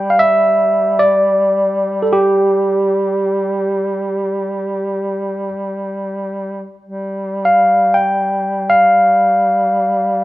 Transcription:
Already playing: G3 G5
0.10 F5
0.19 E5
0.99 D5
2.02 A4
2.13 G4
6.83 G3
7.45 F5
7.94 G5
8.70 F5

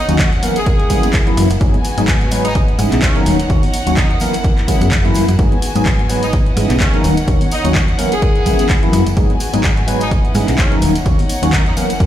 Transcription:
Already playing: D#4 C#5 F#5
0.09 D#2 D#3 F#3 A#3 C#4 F#4, closed hi-hat, tambourine
0.19 kick, clap, closed hi-hat
0.33 closed hi-hat
0.42 E3 F#3 A#3 C#4 E4 A#4, open hi-hat, tambourine, high conga
0.56 G#4, closed hi-hat, tambourine
0.66 kick, closed hi-hat, tambourine
0.80 closed hi-hat
0.90 E3 F#3 A#3 C#4 G#4, kick, open hi-hat, tambourine, low conga
1.03 closed hi-hat, tambourine, high conga
1.13 kick, clap, closed hi-hat, tambourine
1.27 E3 F#3 A#3 C#4 E4, closed hi-hat
1.37 F#2, open hi-hat, tambourine, low conga
1.50 F#1, closed hi-hat, tambourine
1.61 G#2 F#3 G#3 B3 D#4 F#4 G#4 B4 G#5, kick, closed hi-hat, tambourine
1.74 closed hi-hat, high conga
1.85 open hi-hat, tambourine
1.97 G#2 F#3 G#3 B3 D#4 G#4, closed hi-hat, tambourine
2.08 kick, clap, closed hi-hat
2.21 closed hi-hat
2.31 F#3 G#3 B3 D#4 B4, open hi-hat, tambourine, high conga
2.45 D#4, closed hi-hat, tambourine
2.55 C#2 E4 D#5 F#5, kick, closed hi-hat, tambourine
2.68 closed hi-hat
2.78 G#2 E3 B3 C#4 D#4 G#4, open hi-hat, tambourine, low conga
2.92 B1, clap, closed hi-hat, tambourine, high conga
3.02 C#4, kick, clap, closed hi-hat, tambourine
3.15 D#3 F#3 A#3 C#4 D#4, closed hi-hat
3.26 D#1 D#4 C#5, open hi-hat, tambourine, low conga
3.40 closed hi-hat, tambourine
3.49 D#2 D#3 F#3 A#3 C#4 F#4, kick, closed hi-hat, tambourine
3.63 open hi-hat, high conga
3.73 open hi-hat, tambourine
3.86 D#2 D#3 F#3 A#3 C#4 F#4, closed hi-hat, tambourine
3.97 D#4, kick, clap, closed hi-hat, tambourine
4.10 D#4, closed hi-hat
4.20 E3 F#3 A#3 C#4 E4 A#4, open hi-hat, tambourine, high conga
4.33 closed hi-hat, tambourine
4.44 kick, closed hi-hat, tambourine
4.58 clap, closed hi-hat
4.68 E3 F#3 A#3 C#4 G#4, kick, open hi-hat, tambourine, low conga
4.81 F#2, closed hi-hat, tambourine, high conga
4.91 kick, clap, closed hi-hat, tambourine
5.05 E3 F#3 A#3 C#4 E4, closed hi-hat
5.14 F#2, open hi-hat, tambourine, low conga
5.28 F#2, closed hi-hat, tambourine
5.38 G#2 F#3 G#3 B3 D#4 F#4 G#4 B4 G#5, kick, closed hi-hat
5.52 closed hi-hat, high conga
5.62 open hi-hat, tambourine
5.75 G#2 F#3 G#3 B3 D#4 G#4, closed hi-hat, tambourine
5.86 kick, clap, closed hi-hat
5.99 closed hi-hat
6.09 F#3 G#3 B3 D#4 B4, open hi-hat, tambourine, high conga
6.23 D#4, closed hi-hat, tambourine
6.33 C#2 E4 D#5 F#5, kick, closed hi-hat, tambourine
6.46 closed hi-hat
6.57 G#2 E3 B3 C#4 D#4 G#4, open hi-hat, tambourine, low conga
6.70 B1, clap, closed hi-hat, tambourine, high conga
6.80 C#4, kick, clap, closed hi-hat
6.93 D#3 F#3 A#3 C#4 D#4, closed hi-hat
7.04 D#1 D#4 C#5, open hi-hat, tambourine, low conga
7.17 closed hi-hat, tambourine
7.28 D#2 D#3 F#3 A#3 C#4 F#4, kick, closed hi-hat, tambourine
7.41 open hi-hat, high conga
7.51 D#4, open hi-hat, tambourine
7.64 D#2 D#3 F#3 A#3 C#4 F#4, closed hi-hat, tambourine
7.75 kick, clap, closed hi-hat
7.88 closed hi-hat
7.98 E3 F#3 A#3 C#4 E4 A#4, open hi-hat, tambourine, high conga
8.12 G#4, closed hi-hat, tambourine
8.22 kick, closed hi-hat, tambourine
8.36 closed hi-hat
8.46 E3 F#3 A#3 C#4 G#4, kick, open hi-hat, tambourine, low conga
8.59 closed hi-hat, tambourine, high conga
8.69 kick, clap, closed hi-hat, tambourine
8.82 E3 F#3 A#3 C#4 E4, closed hi-hat
8.92 F#2, open hi-hat, tambourine, low conga
9.06 F#1, closed hi-hat, tambourine
9.16 G#2 F#3 G#3 B3 D#4 F#4 G#4 B4 G#5, kick, closed hi-hat
9.30 closed hi-hat, high conga
9.40 open hi-hat, tambourine
9.53 G#2 F#3 G#3 B3 D#4 G#4, closed hi-hat, tambourine
9.64 kick, clap, closed hi-hat, tambourine
9.77 closed hi-hat
9.87 F#3 G#3 B3 D#4 B4, open hi-hat, tambourine, high conga
10.00 D#4, closed hi-hat, tambourine
10.11 C#2 E4 B4 D#5 F#5, kick, closed hi-hat, tambourine
10.25 closed hi-hat
10.34 G#2 E3 B3 C#4 D#4 G#4, open hi-hat, tambourine, low conga
10.48 B1, clap, closed hi-hat, tambourine, high conga
10.58 C#4, kick, clap, closed hi-hat, tambourine
10.71 D#3 F#3 A#3 C#4 D#4, closed hi-hat
10.82 D#1 D#4 C#5 F#5, open hi-hat, tambourine, low conga
10.95 closed hi-hat, tambourine
11.05 D#2 D#3 F#3 A#3 C#4 F#4, kick, closed hi-hat, tambourine
11.19 open hi-hat, high conga
11.29 open hi-hat, tambourine
11.42 D#2 D#3 F#3 A#3 C#4 F#4, closed hi-hat, tambourine
11.53 D#4, kick, clap, closed hi-hat, tambourine
11.66 D#4, closed hi-hat
11.76 E3 F#3 A#3 C#4 E4 A#4, open hi-hat, tambourine, high conga
11.90 closed hi-hat, tambourine
12.00 F#2, kick, closed hi-hat

